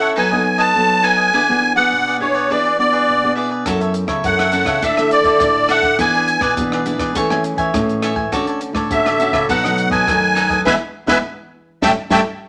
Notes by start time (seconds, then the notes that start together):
Already playing: C#3 C#4 E4 A4 F#5
0.00 A4 C#5 E5
0.16 F#3 B3 D#4 A4 B4 D#5 G#5
0.31 B3 D#4 A4 B4 D#5
0.45 muted cavaquinho stroke
0.58 A4 B4 D#5 A5
0.75 F#3 B3 D#4 A4
1.03 D#4 A4 B4 D#5 G#5
1.17 A4 B4 D#5
1.33 E3 B3 D4 E4 G#4 B4 D5
1.49 B3 D4 G#4 B4 D5
1.62 muted cavaquinho stroke
1.76 B3 D4 G#4 B4 D5 F#5
1.92 B2
2.07 G#4 B4 D5
2.20 B3 D4 E4 G#4 B4 C#5 D5
2.34 G#4 B4 D5
2.50 E3 B3 D4 E4 G#4 B4 D5
2.65 G#4 B4 D5
2.78 B3 D4 G#4 D5, muted cavaquinho stroke
2.92 G#4 B4 D5
3.08 B2
3.23 B3 D4 G#4
3.35 E4 G#4 B4 D5
3.50 G#4 B4 D5
3.66 F#2 F#3 C#4 E4 F#4 A4 C#5 E5, kick, cross-stick, closed hi-hat
3.80 A4 C#5 E5, closed hi-hat
3.94 muted cavaquinho stroke, closed hi-hat
4.07 C#3 A4 C#5 E5, kick, cross-stick
4.24 F#2 C#3 C#4 E4 A4 F#5, kick, closed hi-hat
4.39 A4 C#5 E5, cross-stick, closed hi-hat
4.52 C#4 E4 F#4 A4 C#5 E5, closed hi-hat
4.65 C#3 A4 C#5 E5, kick, cross-stick, closed hi-hat
4.82 D3 A3 D4 E4 A4 D5 E5, kick, closed hi-hat
4.97 A3 E4 A4 D5 E5, cross-stick, closed hi-hat
5.11 D5, muted cavaquinho stroke, closed hi-hat
5.23 D3 A4 D5 E5, kick, closed hi-hat
5.40 A2 D3 A3 E4 A4, kick, cross-stick, closed hi-hat
5.69 D4 A4 D5 E5 F#5, cross-stick, closed hi-hat
5.83 A4 D5 E5, kick, closed hi-hat
5.99 E3 B3 D4 E4 G#4 B4 D5 G#5, kick, cross-stick, closed hi-hat
6.14 G#4 B4 D5, closed hi-hat
6.28 muted cavaquinho stroke, closed hi-hat
6.40 B2 G#4 B4 D5, kick, cross-stick, closed hi-hat
6.57 B2 E3 B3 D4 G#4, kick, closed hi-hat
6.72 G#4 B4 D5, cross-stick
6.85 B3 D4 E4 G#4 B4 D5, closed hi-hat
6.98 E3 G#4 B4 D5, kick, cross-stick, closed hi-hat
7.15 E3 A3 C#4 G#4 A4 C#5 E5 G#5, kick, closed hi-hat
7.30 A3 C#4 G#4 C#5 E5 G#5, cross-stick
7.44 muted cavaquinho stroke, closed hi-hat
7.56 E3 C#5 E5 G#5, kick, closed hi-hat
7.74 A2 E3 A3 C#4 G#4, kick, cross-stick, closed hi-hat
7.89 closed hi-hat
8.02 A4 C#5 E5 G#5, cross-stick, closed hi-hat
8.16 C#5 E5 G#5, kick
8.32 D3 A3 C#4 F#4 A4 C#5 D5, kick, cross-stick, closed hi-hat
8.47 A4 C#5 D5, closed hi-hat
8.61 muted cavaquinho stroke, closed hi-hat
8.73 A2 A4 C#5 D5, kick, cross-stick
8.91 A2 D3 A3 C#4 F#4 E5, kick, closed hi-hat
9.05 A4 C#5 D5, cross-stick, closed hi-hat
9.19 A3 C#4 F#4 A4 C#5 D5, closed hi-hat
9.32 C#3 A4 C#5 D5, kick, cross-stick, closed hi-hat
9.49 B2 F#3 A3 D#4 A4 B4 D#5 F#5, kick, closed hi-hat
9.64 F#3 A3 D#4 A4 B4 D#5, cross-stick, closed hi-hat
9.77 muted cavaquinho stroke, closed hi-hat
9.90 B2 A4 B4 D#5 G#5, kick, closed hi-hat
10.07 F#2 D#3 F#3 A3 D#4, kick, cross-stick, closed hi-hat
10.35 D#4 A4 B4 D#5, cross-stick, closed hi-hat
10.49 A4 B4 D#5, kick, closed hi-hat
10.65 E3 G#3 B3 E4 G#4 B4 E5 G#5, kick, snare
11.06 E3 G#3 B3 E4 G#4 B4 E5 G#5, kick, snare
11.82 A2 G3 A3 C#4 G4 A4 C#5 E5 G5 A5, kick, snare
12.10 A2 G3 A3 C#4 G4 A4 C#5 E5 G5 A5, kick, snare